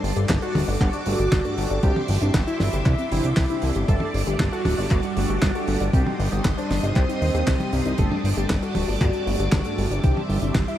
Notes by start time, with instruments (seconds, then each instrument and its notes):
Already playing: string machine G3 D5 A5 D6
0.04 analog synth bass G1, synth arpeggio sound G3, open hi-hat
0.17 analog synth bass G1, analog polysynth G2 A3 D4 G4 A4, synth arpeggio sound G4, closed hi-hat
0.29 analog synth bass G1, synth arpeggio sound G3, kick, snare, clap, closed hi-hat
0.42 analog synth lead F#4, synth arpeggio sound A4, closed hi-hat
0.55 analog synth bass D1, synth arpeggio sound G3, open hi-hat, high tom
0.68 analog synth bass G1, analog polysynth G2 A3 D4 G4 A4, synth arpeggio sound D5, open hi-hat
0.81 analog synth bass G1, synth arpeggio sound G3, analog synth lead F#4, kick, clap, closed hi-hat
0.93 synth arpeggio sound D4, closed hi-hat
1.06 analog synth bass G1, analog polysynth G2 A3 D4 G4 A4, synth arpeggio sound G3, open hi-hat
1.19 analog synth bass G1, synth arpeggio sound G4, closed hi-hat
1.32 analog synth bass G1, synth arpeggio sound G3, kick, snare, clap, closed hi-hat
1.45 analog polysynth G2 A3 D4 G4 A4, synth arpeggio sound A4, closed hi-hat
1.58 analog synth bass G1, synth arpeggio sound G3, open hi-hat
1.70 analog synth bass G1, synth arpeggio sound D5, closed hi-hat
1.83 analog synth bass C2, analog polysynth C3 C4 D4 E4 G4, synth arpeggio sound E3, analog synth lead G4, string machine E5 C6, kick, closed hi-hat
1.96 synth arpeggio sound C4, high tom
2.08 analog synth bass G1, synth arpeggio sound E3, open hi-hat
2.22 analog synth bass G1, analog polysynth C3 C4 D4 E4 G4, synth arpeggio sound D4, closed hi-hat
2.34 analog synth bass G1, synth arpeggio sound E3, kick, snare, clap, closed hi-hat
2.47 analog synth lead E4, synth arpeggio sound E4, closed hi-hat
2.60 analog synth bass G1, synth arpeggio sound E3, snare, open hi-hat, high tom
2.73 analog synth bass G1, analog polysynth C3 C4 D4 E4 G4, synth arpeggio sound G4, closed hi-hat
2.85 analog synth bass C2, synth arpeggio sound E3, analog synth lead E4, kick, clap, closed hi-hat
2.98 synth arpeggio sound C4, closed hi-hat
3.11 analog synth bass G1, analog polysynth C3 C4 D4 E4 G4, synth arpeggio sound E3, open hi-hat
3.24 analog synth bass C2, synth arpeggio sound D4, closed hi-hat
3.36 analog synth bass C2, synth arpeggio sound E3, kick, snare, clap, open hi-hat
3.49 analog polysynth C3 C4 D4 E4 G4, synth arpeggio sound E4, closed hi-hat
3.62 analog synth bass C2, synth arpeggio sound E3, open hi-hat
3.75 analog synth bass G1, synth arpeggio sound G4, closed hi-hat
3.88 analog synth bass G1, analog polysynth G2 A3 D4 G4 A4, string machine G3 D5 A5, synth arpeggio sound G3, analog synth lead A4, kick, closed hi-hat
4.00 synth arpeggio sound D4, high tom
4.14 analog synth bass G1, synth arpeggio sound G3, open hi-hat
4.27 analog synth bass G1, analog polysynth G2 A3 D4 G4 A4, synth arpeggio sound G4, closed hi-hat
4.40 analog synth bass G1, synth arpeggio sound G3, kick, snare, clap, closed hi-hat
4.52 analog synth lead F#4, synth arpeggio sound A4, closed hi-hat
4.65 analog synth bass D1, synth arpeggio sound G3, open hi-hat, high tom
4.78 analog synth bass G1, analog polysynth G2 A3 D4 G4 A4, synth arpeggio sound D5, open hi-hat
4.91 analog synth bass G1, synth arpeggio sound G3, analog synth lead F#4, kick, clap, closed hi-hat
5.03 synth arpeggio sound D4, closed hi-hat
5.17 analog synth bass G1, analog polysynth G2 A3 D4 G4 A4, synth arpeggio sound G3, open hi-hat
5.28 analog synth bass G1, synth arpeggio sound G4, closed hi-hat
5.42 analog synth bass G1, synth arpeggio sound G3, kick, snare, clap, closed hi-hat
5.55 analog polysynth G2 A3 D4 G4 A4, synth arpeggio sound A4, closed hi-hat
5.68 analog synth bass G1, synth arpeggio sound G3, open hi-hat
5.80 analog synth bass G1, synth arpeggio sound D5, closed hi-hat
5.93 analog synth bass C2, analog polysynth C3 G3 C4 D#4 G4, synth arpeggio sound G3, string machine G3 D#5 C6 D#6, analog synth lead G4, kick, closed hi-hat
6.06 synth arpeggio sound D#4, high tom
6.19 analog synth bass G1, synth arpeggio sound G3, open hi-hat
6.32 analog synth bass G1, analog polysynth C3 G3 C4 D#4 G4, synth arpeggio sound G4, closed hi-hat
6.45 analog synth bass G1, synth arpeggio sound G3, kick, snare, clap, closed hi-hat
6.57 analog synth lead D4, synth arpeggio sound C5, closed hi-hat
6.70 analog synth bass G1, synth arpeggio sound G3, snare, open hi-hat, high tom
6.83 analog synth bass G1, analog polysynth C3 G3 C4 D#4 G4, synth arpeggio sound D#5, closed hi-hat
6.95 analog synth bass C2, synth arpeggio sound G3, analog synth lead C4, kick, clap, closed hi-hat
7.09 synth arpeggio sound D#4, closed hi-hat
7.22 analog synth bass D#2, synth arpeggio sound D#5, open hi-hat
7.34 analog synth bass D#2, synth arpeggio sound G4, closed hi-hat
7.47 analog synth bass C2, analog polysynth C3 G3 C4 D#4 G4, synth arpeggio sound G4, kick, snare, clap, open hi-hat
7.60 synth arpeggio sound C4, closed hi-hat, high tom
7.73 analog synth bass C2, analog polysynth G2 G3 C4 D#4 G4, synth arpeggio sound C4, open hi-hat
7.85 analog synth bass C2, synth arpeggio sound D#4, closed hi-hat
7.98 analog synth bass G1, analog polysynth G2 A3 D4 G4 A4, synth arpeggio sound G3, analog synth lead A4, string machine D5 A5 D6, kick, closed hi-hat
8.12 synth arpeggio sound D4, high tom
8.24 analog synth bass G1, synth arpeggio sound G3, open hi-hat
8.37 analog synth bass G1, analog polysynth G2 A3 D4 G4 A4, synth arpeggio sound G4, closed hi-hat
8.50 analog synth bass G1, synth arpeggio sound G3, kick, snare, clap, closed hi-hat
8.62 analog synth lead F#4, synth arpeggio sound A4, closed hi-hat
8.75 analog synth bass D1, synth arpeggio sound G3, open hi-hat, high tom
8.88 analog synth bass G1, analog polysynth G2 A3 D4 G4 A4, synth arpeggio sound D5, open hi-hat
9.01 analog synth bass G1, synth arpeggio sound G3, analog synth lead F#4, kick, clap, closed hi-hat
9.13 synth arpeggio sound D4, closed hi-hat
9.27 analog synth bass G1, analog polysynth G2 A3 D4 G4 A4, synth arpeggio sound G3, open hi-hat
9.39 analog synth bass G1, synth arpeggio sound G4, closed hi-hat
9.52 analog synth bass G1, synth arpeggio sound G3, kick, snare, clap, closed hi-hat
9.65 analog polysynth G2 A3 D4 G4 A4, synth arpeggio sound A4, closed hi-hat
9.78 analog synth bass G1, synth arpeggio sound G3, open hi-hat
9.91 analog synth bass G1, synth arpeggio sound D5, closed hi-hat
10.04 analog synth bass C2, analog polysynth C3 C4 D4 E4 G4, synth arpeggio sound E3, analog synth lead G4, string machine E5 C6, kick, closed hi-hat
10.17 synth arpeggio sound C4, high tom
10.29 analog synth bass G1, synth arpeggio sound E3, open hi-hat
10.42 analog synth bass G1, analog polysynth C3 C4 D4 E4 G4, synth arpeggio sound D4, closed hi-hat
10.55 analog synth bass G1, synth arpeggio sound E3, kick, snare, clap, closed hi-hat
10.68 synth arpeggio sound E4, analog synth lead E4, closed hi-hat